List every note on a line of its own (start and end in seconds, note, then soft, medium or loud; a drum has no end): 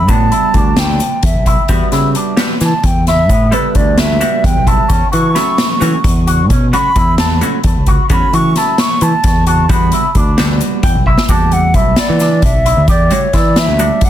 0.00 0.11 B5 medium
0.08 0.30 A2 medium
0.08 0.73 G3 medium
0.08 0.73 B3 medium
0.08 0.25 B3 medium
0.08 0.74 D4 medium
0.08 0.74 F#4 medium
0.08 0.81 A5 loud
0.08 kick medium
0.08 closed hi-hat medium
0.08 shaker medium
0.32 0.48 E4 medium
0.32 closed hi-hat soft
0.54 0.76 D2 medium
0.54 0.87 D4 medium
0.54 kick medium
0.54 closed hi-hat medium
0.54 shaker soft
0.77 0.99 D2 medium
0.77 1.27 G5 medium
0.77 snare loud
0.77 closed hi-hat medium
0.77 shaker soft
1.00 closed hi-hat medium
1.00 shaker medium
1.23 1.34 E2 medium
1.23 1.93 E5 medium
1.23 kick loud
1.23 closed hi-hat medium
1.34 1.56 B1 medium
1.46 1.63 E4 medium
1.46 kick medium
1.46 closed hi-hat medium
1.68 1.80 E2 medium
1.68 2.33 G3 medium
1.68 2.33 B3 medium
1.68 1.86 B3 medium
1.68 2.34 D4 medium
1.68 2.34 F#4 medium
1.68 kick medium
1.68 closed hi-hat medium
1.68 shaker medium
1.92 2.14 C#3 medium
1.92 2.08 E4 medium
1.92 snare soft
1.92 closed hi-hat medium
2.15 2.47 D4 medium
2.15 closed hi-hat medium
2.15 shaker soft
2.37 2.53 G3 medium
2.37 2.54 B3 medium
2.37 2.54 D4 medium
2.37 2.54 F#4 medium
2.37 snare loud
2.37 closed hi-hat medium
2.37 shaker soft
2.61 2.72 E3 medium
2.61 2.87 A5 medium
2.61 snare soft
2.61 closed hi-hat medium
2.61 shaker medium
2.84 3.30 E2 medium
2.84 3.08 G5 medium
2.84 kick loud
2.84 closed hi-hat medium
3.07 3.23 E4 medium
3.07 3.55 E5 medium
3.07 snare soft
3.07 closed hi-hat medium
3.29 3.51 A2 medium
3.29 3.46 B3 medium
3.29 kick medium
3.29 closed hi-hat medium
3.29 shaker medium
3.51 4.16 G3 medium
3.51 4.17 B3 medium
3.51 4.17 D4 medium
3.51 3.68 E4 medium
3.51 4.17 A4 medium
3.51 3.77 B4 medium
3.51 closed hi-hat medium
3.51 shaker soft
3.75 3.97 D2 medium
3.75 4.07 D4 medium
3.75 4.00 D5 medium
3.75 kick medium
3.75 closed hi-hat medium
3.98 4.20 D2 medium
3.98 4.47 E5 medium
3.98 snare loud
3.98 closed hi-hat medium
3.98 shaker soft
4.20 4.85 G3 medium
4.20 4.85 B3 soft
4.20 4.85 D4 soft
4.20 4.85 F#4 medium
4.20 closed hi-hat medium
4.20 shaker medium
4.44 4.55 E2 medium
4.44 4.69 G5 medium
4.44 kick loud
4.44 closed hi-hat medium
4.57 4.78 B1 medium
4.67 4.83 E4 medium
4.67 5.11 A5 medium
4.67 kick medium
4.67 closed hi-hat medium
4.88 5.01 E2 medium
4.88 5.05 C#4 medium
4.88 kick loud
4.88 closed hi-hat medium
4.88 shaker medium
5.12 5.35 E3 medium
5.12 5.28 F#4 medium
5.12 6.23 C#6 medium
5.12 closed hi-hat medium
5.35 5.79 F#3 medium
5.35 5.79 A3 medium
5.35 5.80 C#4 medium
5.35 5.67 E4 medium
5.35 5.80 F#4 medium
5.35 snare soft
5.35 closed hi-hat medium
5.35 shaker soft
5.58 snare loud
5.58 closed hi-hat medium
5.58 shaker soft
5.80 5.92 E3 medium
5.80 5.97 F#3 medium
5.80 5.97 A3 medium
5.80 5.97 C#4 medium
5.80 5.97 F#4 medium
5.80 closed hi-hat medium
5.80 shaker soft
6.04 6.50 E2 medium
6.04 kick loud
6.04 closed hi-hat medium
6.27 6.43 F#4 medium
6.27 closed hi-hat medium
6.50 6.72 B2 medium
6.50 6.66 C#4 medium
6.50 kick medium
6.50 closed hi-hat medium
6.50 shaker soft
6.73 6.89 F#3 medium
6.73 6.89 A3 medium
6.73 6.89 C#4 medium
6.73 6.89 F#4 medium
6.73 7.16 B5 loud
6.73 closed hi-hat medium
6.96 7.18 E2 medium
6.96 7.28 E4 medium
6.96 kick medium
6.96 closed hi-hat medium
6.96 shaker soft
7.18 7.40 E2 medium
7.18 7.40 A5 medium
7.18 snare loud
7.18 closed hi-hat medium
7.18 shaker soft
7.41 7.57 F#3 medium
7.41 7.58 A3 medium
7.41 7.58 C#4 medium
7.41 7.58 F#4 medium
7.41 closed hi-hat medium
7.41 shaker medium
7.64 7.75 E2 medium
7.64 kick loud
7.64 closed hi-hat medium
7.77 7.98 C#2 medium
7.86 8.03 F#4 medium
7.86 kick medium
7.86 closed hi-hat medium
8.09 8.21 E2 medium
8.09 8.74 F#3 medium
8.09 8.74 A3 medium
8.09 8.74 C#4 medium
8.09 8.27 C#4 medium
8.09 8.75 F#4 medium
8.09 8.36 B5 loud
8.09 kick loud
8.09 closed hi-hat medium
8.09 shaker medium
8.33 8.55 E3 medium
8.33 8.49 F#4 medium
8.33 8.59 C#6 loud
8.33 closed hi-hat medium
8.56 8.88 E4 medium
8.56 8.81 A5 medium
8.56 snare soft
8.56 closed hi-hat medium
8.56 shaker soft
8.78 9.04 C#6 loud
8.78 snare loud
8.78 closed hi-hat medium
8.78 shaker soft
9.01 9.12 E3 loud
9.01 9.48 A5 medium
9.01 closed hi-hat medium
9.01 shaker medium
9.24 9.67 E2 medium
9.24 kick loud
9.24 snare soft
9.24 closed hi-hat medium
9.46 9.63 F#4 medium
9.46 9.69 A5 medium
9.46 closed hi-hat medium
9.69 9.91 E2 medium
9.69 10.01 G3 medium
9.69 10.02 B3 medium
9.69 9.86 B3 medium
9.69 10.02 D4 medium
9.69 10.02 F#4 medium
9.69 10.14 B5 medium
9.69 kick loud
9.69 closed hi-hat medium
9.69 shaker medium
9.92 10.09 E4 medium
9.92 closed hi-hat medium
9.92 shaker soft
10.15 10.37 D2 medium
10.15 10.48 D4 medium
10.15 kick medium
10.15 closed hi-hat medium
10.38 10.60 D2 medium
10.38 11.02 G3 medium
10.38 11.02 B3 medium
10.38 11.02 D4 medium
10.38 11.02 F#4 medium
10.38 snare loud
10.38 closed hi-hat medium
10.61 closed hi-hat medium
10.61 shaker medium
10.83 10.94 E2 medium
10.83 11.05 G5 medium
10.83 kick loud
10.83 closed hi-hat medium
10.83 shaker soft
10.95 11.17 B1 medium
11.06 11.22 E4 medium
11.06 11.28 E5 medium
11.06 kick medium
11.18 snare medium
11.28 11.72 E2 medium
11.28 11.93 G3 medium
11.28 11.93 A3 soft
11.28 11.93 D4 medium
11.28 11.93 F#4 medium
11.28 11.61 G4 medium
11.28 11.54 A5 loud
11.28 kick medium
11.28 closed hi-hat medium
11.28 shaker medium
11.51 11.77 F#5 loud
11.51 closed hi-hat soft
11.74 11.96 B1 medium
11.74 12.06 E4 medium
11.74 12.00 E5 medium
11.74 kick medium
11.74 closed hi-hat medium
11.96 12.46 D5 medium
11.96 snare loud
11.96 closed hi-hat medium
12.09 12.41 E3 medium
12.20 12.52 D4 medium
12.20 snare soft
12.20 closed hi-hat medium
12.20 shaker medium
12.42 12.75 B1 medium
12.42 12.89 E5 medium
12.42 kick loud
12.42 closed hi-hat medium
12.42 shaker soft
12.65 12.81 E4 medium
12.65 closed hi-hat medium
12.77 12.87 D2 medium
12.87 13.09 E2 medium
12.87 13.20 G4 medium
12.87 13.13 D5 medium
12.87 kick loud
12.87 closed hi-hat medium
12.87 shaker soft
13.10 13.27 G3 medium
13.10 13.27 A3 medium
13.10 13.27 D4 soft
13.10 13.27 F#4 medium
13.10 13.38 C#5 medium
13.10 closed hi-hat medium
13.33 13.66 E3 medium
13.33 13.65 E4 medium
13.33 13.60 D5 medium
13.33 kick medium
13.33 snare soft
13.33 closed hi-hat medium
13.56 14.06 E5 medium
13.56 snare loud
13.56 closed hi-hat medium
13.68 13.89 D2 medium
13.79 14.10 G3 medium
13.79 14.10 A3 soft
13.79 14.10 D4 medium
13.79 14.10 F#4 medium
13.79 closed hi-hat medium
13.79 shaker medium
14.01 14.10 F#5 medium
14.01 kick loud
14.01 closed hi-hat medium
14.01 shaker soft